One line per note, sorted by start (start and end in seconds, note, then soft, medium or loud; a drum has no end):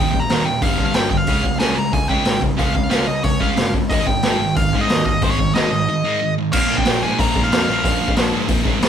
0.00 0.12 D#2 medium
0.00 0.12 A#2 medium
0.00 0.12 D#3 medium
0.00 0.22 G5 loud
0.13 0.26 D#1 medium
0.13 0.28 D#2 medium
0.13 0.29 A#2 medium
0.13 kick medium
0.20 0.46 A#5 loud
0.29 0.42 D#1 medium
0.29 0.45 D#2 medium
0.29 0.45 A#2 loud
0.29 0.46 D#3 medium
0.29 snare loud
0.29 open hi-hat medium
0.45 0.58 D#1 medium
0.45 0.61 D#2 medium
0.45 0.61 A#2 medium
0.45 0.62 G5 loud
0.62 0.75 G1 medium
0.62 0.77 G2 medium
0.62 0.78 D3 loud
0.62 0.78 G3 loud
0.62 0.85 F5 medium
0.62 kick loud
0.62 open hi-hat medium
0.78 0.91 G2 medium
0.78 0.94 G2 medium
0.78 0.94 D3 medium
0.78 0.95 G3 medium
0.78 kick medium
0.86 0.94 F5 medium
0.94 1.20 G1 medium
0.94 1.10 G2 medium
0.94 1.09 D3 loud
0.94 1.11 G3 loud
0.94 1.09 G5 loud
0.94 snare loud
0.94 open hi-hat medium
1.10 1.26 G2 medium
1.10 1.26 D3 medium
1.10 1.18 G5 medium
1.10 kick medium
1.18 1.59 F5 medium
1.27 1.40 C#2 medium
1.27 1.43 C#3 medium
1.27 1.44 G#3 loud
1.27 1.43 C#4 loud
1.27 kick loud
1.27 open hi-hat medium
1.44 1.57 C#2 medium
1.44 1.58 C#3 medium
1.44 1.59 G#3 medium
1.44 kick medium
1.59 1.73 C#2 medium
1.59 1.74 C#3 medium
1.59 1.75 G#3 medium
1.59 1.76 C#4 medium
1.59 1.77 G#5 loud
1.59 snare loud
1.59 open hi-hat soft
1.75 1.89 C#2 medium
1.75 1.91 C#3 medium
1.75 1.91 G#3 medium
1.75 1.93 A#5 loud
1.92 2.06 C#2 medium
1.92 2.07 C#3 medium
1.92 2.07 G#3 medium
1.92 2.09 G#5 loud
1.92 kick loud
1.92 open hi-hat medium
2.09 2.23 C#2 medium
2.09 2.24 C#3 medium
2.09 2.24 G#3 loud
2.09 2.26 C#4 loud
2.09 2.40 G5 medium
2.09 kick medium
2.25 2.51 G#1 medium
2.25 2.39 C#3 medium
2.25 2.40 G#3 medium
2.25 snare loud
2.25 open hi-hat medium
2.41 2.56 C#3 medium
2.41 2.56 G#3 medium
2.41 kick medium
2.57 2.72 C#2 medium
2.57 2.73 C#3 medium
2.57 2.73 G#3 medium
2.57 2.74 C#4 medium
2.57 2.74 F5 loud
2.57 kick loud
2.57 open hi-hat medium
2.74 2.88 C#2 medium
2.74 2.88 C#3 medium
2.74 2.89 G#3 medium
2.74 2.90 F5 medium
2.74 kick medium
2.90 3.04 C#2 medium
2.90 3.05 C#3 medium
2.90 3.06 G#3 medium
2.90 3.07 C#4 loud
2.90 3.07 F5 loud
2.90 snare loud
2.90 open hi-hat soft
3.06 3.21 C#2 medium
3.06 3.22 C#3 medium
3.06 3.23 G#3 medium
3.06 3.24 D#5 medium
3.24 3.37 C#2 medium
3.24 3.39 C#3 medium
3.24 3.39 G#3 medium
3.24 3.42 C#5 medium
3.24 kick loud
3.24 open hi-hat medium
3.40 3.54 C#2 medium
3.40 3.55 C#3 medium
3.40 3.56 G#3 medium
3.40 3.56 C#4 loud
3.40 3.71 F5 loud
3.40 kick medium
3.56 3.83 G1 medium
3.56 3.72 C#3 medium
3.56 3.72 G#3 medium
3.56 snare loud
3.56 open hi-hat medium
3.74 3.89 C#3 medium
3.74 3.90 G#3 medium
3.74 kick medium
3.90 4.03 G#1 loud
3.90 4.06 G#2 medium
3.90 4.07 D#3 loud
3.90 4.07 G#3 medium
3.90 4.05 D#5 loud
3.90 kick loud
3.90 open hi-hat medium
4.07 4.20 G#1 medium
4.07 4.23 G#2 medium
4.07 4.23 D#3 medium
4.07 4.56 G5 loud
4.07 kick medium
4.23 4.36 G#1 medium
4.23 4.39 G#2 medium
4.23 4.39 D#3 medium
4.23 4.40 G#3 loud
4.23 snare loud
4.23 open hi-hat medium
4.39 4.52 G#1 medium
4.39 4.56 G#2 medium
4.44 4.56 D#3 medium
4.56 4.69 G#1 medium
4.56 4.72 G#2 medium
4.56 4.72 D#3 medium
4.56 4.82 F5 loud
4.56 kick loud
4.56 open hi-hat medium
4.73 4.86 G#2 medium
4.73 4.89 G#2 loud
4.73 4.89 D#3 medium
4.73 4.89 G#3 loud
4.73 kick medium
4.81 5.04 D#5 medium
4.88 5.14 D#2 medium
4.88 5.05 G#2 medium
4.88 5.05 D#3 medium
4.88 snare loud
4.88 open hi-hat medium
5.06 5.21 G#2 medium
5.06 5.22 D#3 medium
5.06 5.23 D#5 medium
5.06 kick medium
5.22 5.35 G#1 loud
5.22 5.38 G#2 medium
5.22 5.38 D#3 loud
5.22 5.39 G#3 loud
5.22 5.31 C5 loud
5.22 kick loud
5.22 open hi-hat medium
5.31 5.54 C#5 medium
5.39 5.51 G#1 medium
5.39 5.54 G#2 medium
5.39 5.54 D#3 medium
5.39 kick medium
5.55 5.67 G#1 medium
5.55 5.70 G#2 medium
5.55 5.71 D#3 medium
5.55 5.71 G#3 loud
5.55 5.71 D#5 medium
5.55 snare loud
5.55 open hi-hat soft
5.71 5.84 G#1 medium
5.71 5.86 G#2 medium
5.71 5.86 D#3 medium
5.71 6.33 D#5 medium
5.89 6.03 G#2 medium
5.89 6.03 D#3 medium
6.04 6.19 G#2 medium
6.04 6.19 D#3 medium
6.04 6.20 G#3 medium
6.21 6.36 G#2 medium
6.21 6.36 D#3 medium
6.38 6.52 G#2 medium
6.38 6.52 D#3 medium
6.53 6.84 A#1 loud
6.53 6.71 A#2 medium
6.53 6.70 F3 loud
6.53 6.70 A#3 loud
6.53 6.77 F5 loud
6.53 kick loud
6.53 crash loud
6.70 6.88 A#2 medium
6.70 6.88 F3 medium
6.70 6.89 A#3 loud
6.78 7.03 G5 loud
6.78 kick medium
6.85 7.02 A#1 medium
6.85 7.03 A#2 medium
6.85 7.03 F3 loud
6.85 snare loud
6.85 open hi-hat medium
6.89 7.03 A#3 loud
7.03 7.18 G#2 medium
7.03 7.19 A#2 medium
7.03 7.19 F3 medium
7.03 7.19 A#3 loud
7.03 7.19 G#5 loud
7.19 7.34 A#1 medium
7.19 7.35 A#2 loud
7.19 7.35 F3 loud
7.19 7.34 A#3 loud
7.19 7.44 A#5 loud
7.19 kick loud
7.19 open hi-hat medium
7.35 7.51 G#2 medium
7.35 7.51 A#2 medium
7.35 7.51 F3 medium
7.35 7.51 A#3 medium
7.35 kick medium
7.44 7.68 F5 medium
7.52 7.67 F2 medium
7.52 7.68 A#2 loud
7.52 7.67 F3 loud
7.52 7.67 A#3 loud
7.52 snare loud
7.52 open hi-hat medium
7.68 7.84 A#1 medium
7.68 7.83 A#2 medium
7.68 7.83 F3 medium
7.68 7.84 A#3 medium
7.68 8.14 F5 medium
7.84 8.15 A#1 medium
7.84 8.00 A#2 medium
7.84 7.99 F3 loud
7.84 7.99 A#3 loud
7.84 kick loud
7.84 open hi-hat medium
8.00 8.15 A#2 medium
8.00 8.15 F3 medium
8.00 8.15 A#3 medium
8.08 kick medium
8.16 8.31 A#1 medium
8.16 8.33 A#2 medium
8.16 8.32 F3 loud
8.16 8.32 A#3 loud
8.16 snare loud
8.16 open hi-hat medium
8.32 8.48 G#2 medium
8.32 8.47 A#2 medium
8.32 8.48 F3 medium
8.32 8.48 A#3 medium
8.48 8.65 A#1 loud
8.48 8.64 A#2 loud
8.48 8.64 F3 loud
8.48 8.63 A#3 loud
8.48 kick loud
8.48 open hi-hat medium
8.64 8.80 G#2 medium
8.64 8.79 A#2 medium
8.64 8.80 F3 medium
8.64 8.80 A#3 loud
8.64 kick medium
8.80 8.89 F2 loud
8.80 8.89 A#2 medium
8.80 8.89 F3 loud
8.80 8.89 A#3 loud
8.80 snare loud
8.80 open hi-hat medium